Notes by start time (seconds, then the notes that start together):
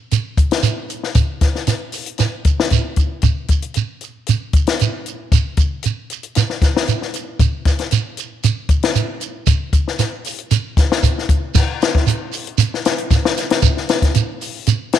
0.11 closed hi-hat, shekere
0.38 kick, closed hi-hat, shekere
0.51 snare, closed hi-hat
0.63 closed hi-hat, shekere
0.89 closed hi-hat, shekere
1.03 snare
1.15 kick, closed hi-hat, shekere
1.41 kick, snare, closed hi-hat, shekere
1.55 snare
1.67 snare, closed hi-hat, shekere
1.92 open hi-hat, shekere
2.06 closed hi-hat
2.18 snare, closed hi-hat, shekere
2.45 kick, closed hi-hat, shekere
2.60 snare
2.70 kick, closed hi-hat, shekere
2.96 kick, closed hi-hat, shekere
3.22 kick, closed hi-hat, shekere
3.48 kick, closed hi-hat, shekere
3.62 closed hi-hat
3.74 closed hi-hat, shekere
4.01 closed hi-hat, shekere
4.27 closed hi-hat, shekere
4.53 kick, closed hi-hat, shekere
4.67 snare, closed hi-hat
4.79 closed hi-hat, shekere
5.06 closed hi-hat, shekere
5.32 kick, closed hi-hat, shekere
5.57 kick, closed hi-hat, shekere
5.83 closed hi-hat, shekere
6.10 closed hi-hat, shekere
6.23 closed hi-hat
6.35 snare, closed hi-hat, shekere
6.50 snare
6.62 kick, snare, closed hi-hat, shekere
6.77 snare
6.88 closed hi-hat, shekere
7.02 snare
7.14 closed hi-hat, shekere
7.40 kick, closed hi-hat, shekere
7.65 kick, snare, closed hi-hat, shekere
7.79 snare, closed hi-hat
7.91 closed hi-hat, shekere
8.17 closed hi-hat, shekere
8.43 closed hi-hat, shekere
8.69 kick, closed hi-hat, shekere
8.83 snare, closed hi-hat
8.96 closed hi-hat, shekere
9.21 closed hi-hat, shekere
9.47 kick, closed hi-hat, shekere
9.73 kick, closed hi-hat, shekere
9.88 snare
9.99 snare, closed hi-hat, shekere
10.24 open hi-hat, shekere
10.38 closed hi-hat
10.51 closed hi-hat, shekere
10.77 kick, snare, closed hi-hat, shekere
10.92 snare
11.03 kick, closed hi-hat, shekere
11.18 snare
11.29 kick, closed hi-hat, shekere
11.55 kick, snare, crash, shekere
11.81 snare, closed hi-hat, shekere
11.95 kick, snare
12.07 closed hi-hat, shekere
12.32 open hi-hat, shekere
12.47 closed hi-hat
12.58 closed hi-hat, shekere
12.74 snare
12.85 snare, closed hi-hat, shekere
12.98 closed hi-hat
13.11 kick, snare, closed hi-hat, shekere
13.25 snare
13.37 snare, closed hi-hat, shekere
13.50 snare, closed hi-hat
13.62 kick, closed hi-hat, shekere
13.77 snare
13.89 snare, closed hi-hat, shekere
14.02 kick, snare, closed hi-hat
14.14 closed hi-hat, shekere
14.41 open hi-hat, shekere
14.67 closed hi-hat, shekere
14.93 snare, closed hi-hat, shekere